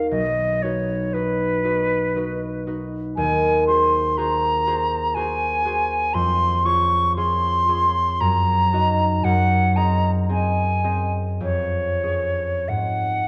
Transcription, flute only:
0.10 0.63 D#5 medium
0.62 1.14 C#5 medium
1.13 2.66 B4 medium
3.16 3.64 G#5 medium
3.67 4.18 C6 medium
4.17 5.15 A#5 medium
5.14 6.15 G#5 medium
6.13 6.66 C6 medium
6.65 7.15 C#6 medium
7.16 8.21 C6 medium
8.20 9.25 A#5 medium
9.23 9.77 F#5 medium
9.76 10.11 A#5 medium
10.30 11.12 G#5 medium
11.42 12.69 C#5 medium
12.68 13.28 F#5 medium

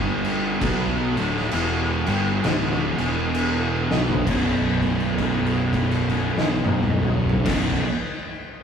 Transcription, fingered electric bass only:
0.00 0.58 G1 loud
0.61 1.12 B1 loud
1.16 1.50 D1 medium
1.52 2.03 E1 loud
2.08 2.42 G1 loud
2.45 2.95 D1 medium
2.99 3.87 E1 medium
3.90 4.25 B1 medium
4.26 7.28 B0 loud
7.46 7.80 B0 loud

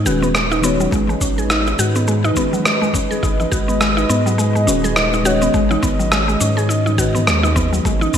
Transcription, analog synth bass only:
0.06 0.88 D#1 medium
0.92 1.15 G#1 medium
1.21 1.74 G#1 medium
1.79 2.32 G#2 medium
3.23 3.46 G#1 medium
3.52 4.05 G#1 medium
4.10 4.69 G#2 medium
4.67 5.49 D#1 medium
5.54 5.77 G#1 medium
5.83 6.36 G#1 medium
6.41 7.29 G#2 medium
7.27 7.80 D#2 medium
7.85 8.08 G#1 medium
8.14 8.18 G#1 medium

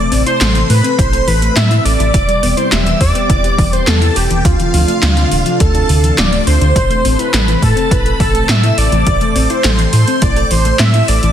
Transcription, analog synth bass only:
0.12 0.23 A1 medium
0.41 0.63 A1 loud
0.70 0.81 A2 loud
0.99 1.21 A1 medium
1.28 1.50 A1 loud
1.56 1.79 A2 medium
1.85 1.96 A1 medium
2.00 2.11 A1 medium
2.14 2.25 E1 loud
2.43 2.54 E1 medium
2.72 2.94 E1 loud
3.01 3.12 E2 loud
3.30 3.52 E1 medium
3.58 3.81 E1 medium
3.87 4.10 E2 medium
4.16 4.27 E1 medium
4.30 4.42 E1 medium
4.45 4.56 D2 loud
4.74 4.85 D2 medium
5.02 5.25 D2 loud
5.31 5.43 D1 loud
5.60 5.83 D2 medium
5.89 6.12 D2 medium
6.18 6.41 D1 medium
6.47 6.58 D2 medium
6.61 6.72 D2 medium
6.76 6.87 A1 loud
7.05 7.16 A1 medium
7.33 7.56 A1 loud
7.62 7.74 A2 loud
7.91 8.14 A1 medium
8.20 8.42 A1 medium
8.49 8.71 A2 medium
8.78 8.89 A1 medium
8.92 9.03 A1 medium
9.07 9.18 A1 loud
9.35 9.47 A1 medium
9.64 9.87 A1 loud
9.93 10.04 A2 loud
10.22 10.44 A1 medium
10.51 10.73 A1 medium
10.79 11.02 A2 medium
11.08 11.20 A1 medium
11.23 11.32 A1 medium

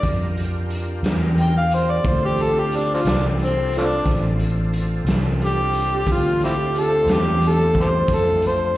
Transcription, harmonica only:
1.41 1.55 G5 medium
1.57 1.72 F5 medium
1.74 1.92 C5 medium
1.91 2.09 D5 medium
2.07 2.22 C5 medium
2.25 2.43 G4 medium
2.42 2.61 A4 medium
2.59 2.78 G4 medium
2.76 2.90 D4 medium
2.94 3.01 C4 medium
2.94 3.00 D4 medium
2.94 3.12 F4 medium
3.11 3.24 D4 medium
3.44 3.74 C4 medium
3.78 3.84 F3 medium
3.78 3.84 A3 medium
3.78 4.08 D4 medium
5.45 6.08 G4 loud
6.11 6.42 F4 medium
6.45 6.53 C4 medium
6.45 6.52 E4 medium
6.45 6.81 G4 medium
6.79 7.15 A4 medium
7.14 7.49 G4 loud
7.48 7.77 A4 medium
7.80 7.89 G4 medium
7.80 7.86 A4 medium
7.80 8.10 C5 medium
8.14 8.44 A4 medium
8.47 8.77 C5 loud

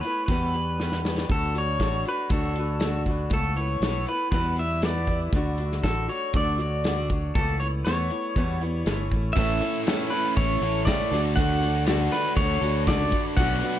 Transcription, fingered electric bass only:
0.29 1.26 E2 medium
1.30 1.77 D2 medium
1.80 2.03 A1 medium
2.31 3.28 D2 medium
3.30 3.78 C#2 medium
3.80 4.05 B1 medium
4.32 5.29 E2 medium
5.33 5.80 D2 medium
5.84 6.07 A1 medium
6.34 7.31 D2 medium
7.35 7.82 C#2 medium
7.86 8.09 E2 medium
8.36 8.83 E2 medium
8.86 9.09 G1 medium
9.12 9.34 A1 medium
9.37 9.60 A1 medium
10.37 10.60 A1 loud
10.61 10.87 A1 medium
10.87 10.98 C#2 medium
11.11 12.08 D2 loud
12.36 12.60 D2 medium
12.62 12.89 D2 medium
12.87 13.11 C#2 loud
13.37 13.60 B1 loud

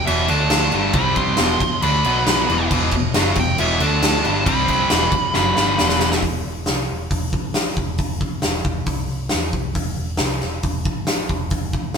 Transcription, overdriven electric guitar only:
0.07 0.28 E2 medium
0.07 0.28 B2 medium
0.07 0.28 E3 loud
0.29 0.72 D3 medium
0.29 0.72 A3 medium
0.29 0.72 D4 medium
0.73 0.94 G2 medium
0.73 0.94 D3 loud
0.73 0.94 G3 medium
0.95 1.38 C3 loud
0.95 1.38 G3 loud
0.95 1.39 C4 loud
1.39 1.60 E2 loud
1.39 1.60 B2 loud
1.39 1.60 E3 loud
1.62 muted overdriven electric guitar stroke medium
1.83 2.04 D3 medium
1.83 2.04 A3 loud
1.83 2.05 D4 medium
2.05 2.48 B2 medium
2.05 2.48 F#3 medium
2.05 2.49 B3 medium
2.50 2.70 E2 loud
2.50 2.71 B2 loud
2.50 2.71 E3 loud
2.72 2.92 E2 loud
2.72 2.93 B2 loud
2.72 2.93 E3 loud
2.94 3.11 E2 medium
2.94 3.11 B2 medium
3.15 3.36 F#2 loud
3.15 3.36 C#3 loud
3.15 3.36 F#3 loud
3.38 3.55 E2 medium
3.38 3.55 B2 medium
3.59 3.80 E2 medium
3.59 3.80 B2 loud
3.59 3.80 E3 loud
3.80 4.24 D3 medium
3.80 4.24 A3 medium
3.80 4.24 D4 medium
4.25 4.46 G2 loud
4.25 4.45 D3 loud
4.25 4.45 G3 loud
4.46 4.89 C3 loud
4.46 4.89 G3 loud
4.46 4.90 C4 loud
4.90 5.11 E2 loud
4.90 5.12 B2 loud
4.90 5.12 E3 loud
5.12 muted overdriven electric guitar stroke medium
5.34 5.56 F#2 loud
5.34 5.56 C#3 medium
5.34 5.56 F#3 loud
5.56 5.78 G2 medium
5.56 5.78 D3 medium
5.56 5.78 G3 loud
5.78 6.22 E2 loud
5.78 6.22 B2 loud
5.78 6.22 E3 loud

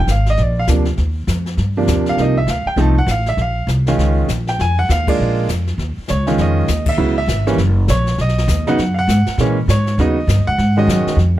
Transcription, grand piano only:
0.11 0.27 F5 medium
0.30 0.39 D#5 medium
0.42 0.57 D5 medium
0.59 0.65 F5 medium
0.68 0.85 C3 soft
0.68 0.84 F3 soft
0.68 0.85 A#3 soft
0.68 0.85 D4 medium
1.77 2.16 C3 medium
1.77 2.16 F3 medium
1.77 2.16 A#3 medium
1.77 2.16 D4 medium
2.09 2.19 F5 medium
2.19 2.35 C3 medium
2.19 2.35 F3 soft
2.19 2.35 A#3 soft
2.19 2.35 D#4 medium
2.19 2.37 D#5 medium
2.38 2.48 E5 medium
2.50 2.67 F5 medium
2.67 2.78 G5 medium
2.77 2.94 F3 medium
2.77 2.94 A3 medium
2.77 2.94 C4 medium
2.77 2.94 D#4 medium
2.77 2.97 A5 medium
2.98 3.09 F#5 medium
3.11 3.27 F5 medium
3.29 3.39 E5 medium
3.42 3.68 F5 medium
3.88 4.27 D#3 medium
3.88 4.27 G#3 medium
3.88 4.27 C#4 medium
3.88 4.27 F4 medium
4.49 4.59 G5 medium
4.61 4.77 G#5 medium
4.79 4.89 F#5 medium
4.91 5.08 F5 medium
5.08 5.47 G#3 medium
5.08 5.47 A#3 medium
5.08 5.47 D4 medium
5.08 5.47 F4 medium
5.08 5.47 D5 medium
6.10 6.37 C#5 medium
6.27 6.67 D#3 medium
6.27 6.66 G#3 medium
6.27 6.66 C#4 medium
6.27 6.66 F4 medium
6.41 6.85 D#5 medium
6.89 7.16 E5 medium
6.97 7.14 C#3 medium
6.97 7.15 F#3 medium
6.97 7.14 B3 medium
6.97 7.15 E4 medium
7.18 7.56 E5 loud
7.47 7.58 E3 medium
7.47 7.57 G3 medium
7.47 7.57 A#3 medium
7.47 7.57 C#4 medium
7.90 8.17 C#5 medium
8.21 8.65 D#5 medium
8.67 8.78 C#3 medium
8.67 8.78 F#3 medium
8.67 8.78 B3 medium
8.67 8.78 D#4 medium
8.67 8.96 F#5 medium
8.94 8.96 F5 medium
8.99 9.37 F#5 loud
9.40 9.56 E3 medium
9.40 9.56 G#3 medium
9.40 9.56 A#3 medium
9.40 9.56 C#4 medium
9.70 9.97 C#5 medium
9.99 10.16 C#3 medium
9.99 10.16 F#3 medium
9.99 10.15 B3 medium
9.99 10.16 D#4 medium
9.99 10.45 D#5 medium
10.47 10.75 F#5 loud
10.77 11.16 D#3 medium
10.77 11.17 G#3 medium
10.77 11.17 C#4 medium
10.77 11.17 F#4 medium
10.77 11.17 D#5 medium

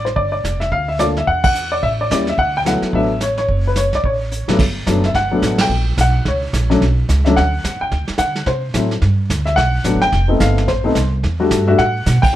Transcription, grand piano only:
0.05 0.10 C5 medium
0.16 0.31 D5 medium
0.32 0.61 D5 medium
0.60 0.72 E5 medium
0.72 0.89 F5 loud
0.88 1.00 E5 medium
0.99 1.14 A3 soft
0.99 1.15 A#3 soft
0.99 1.15 D4 soft
0.99 1.15 F4 medium
0.99 1.05 D5 medium
1.18 1.28 E5 medium
1.27 1.42 F#5 loud
1.44 1.72 F#5 loud
1.72 1.82 D5 medium
1.83 1.88 E5 loud
2.01 2.10 D5 medium
2.11 2.26 G3 medium
2.11 2.26 A#3 soft
2.11 2.26 C#4 soft
2.11 2.26 E4 medium
2.11 2.28 D5 medium
2.29 2.38 E5 medium
2.39 2.56 F#5 loud
2.57 2.61 G5 medium
2.65 2.92 F#3 medium
2.65 2.92 A3 medium
2.65 2.92 B3 soft
2.65 2.92 E4 medium
2.65 2.95 F#5 medium
2.93 3.09 F#3 medium
2.93 3.09 A3 medium
2.93 3.09 B3 medium
2.93 3.09 D4 medium
2.93 3.23 E5 medium
3.23 3.37 C#5 medium
3.38 3.64 C#5 medium
3.67 3.78 B4 medium
3.77 3.94 C#5 medium
3.95 4.04 D5 medium
4.05 4.46 C#5 medium
4.48 4.58 G2 medium
4.48 4.58 F#3 medium
4.48 4.58 A3 medium
4.48 4.58 B3 medium
4.48 4.59 D4 medium
4.87 5.02 F#3 medium
4.87 5.02 A3 medium
4.87 5.03 B3 medium
4.87 5.03 D4 medium
5.05 5.10 E5 medium
5.15 5.57 F#5 medium
5.31 5.68 F#3 medium
5.31 5.68 A3 medium
5.31 5.68 B3 medium
5.31 5.69 D4 medium
5.61 5.86 G5 loud
6.01 6.28 F#5 medium
6.28 6.68 C#5 medium
6.70 6.80 F#3 medium
6.70 6.80 A3 medium
6.70 6.80 C#4 medium
6.70 6.80 D4 medium
7.25 7.36 F#3 medium
7.25 7.36 A3 medium
7.25 7.36 C#4 medium
7.25 7.36 D4 medium
7.25 7.36 E5 medium
7.37 7.82 F#5 loud
7.81 8.07 G5 medium
8.19 8.48 F#5 loud
8.47 8.88 C5 medium
8.75 8.90 F#3 medium
8.75 8.90 A3 soft
8.75 8.90 C4 soft
8.75 8.90 E4 medium
9.46 9.56 E5 medium
9.56 9.98 F#5 loud
9.85 10.00 F#3 medium
9.85 10.00 A3 soft
9.85 10.00 B3 medium
9.85 10.01 D4 medium
10.02 10.28 G5 loud
10.28 10.65 A3 medium
10.28 10.66 B3 medium
10.28 10.66 C4 medium
10.28 10.66 D#4 medium
10.41 10.66 F5 medium
10.68 11.10 C5 medium
10.84 10.94 A3 medium
10.84 10.95 B3 medium
10.84 10.95 C4 medium
10.84 10.95 D#4 medium
11.40 11.66 G3 medium
11.40 11.66 A3 medium
11.40 11.66 D4 medium
11.40 11.66 F#4 medium
11.67 11.78 G3 medium
11.67 11.78 A3 medium
11.67 11.78 D4 medium
11.67 11.78 F#4 medium
11.67 11.79 E5 medium
11.78 12.25 F#5 loud
12.22 12.36 G5 loud

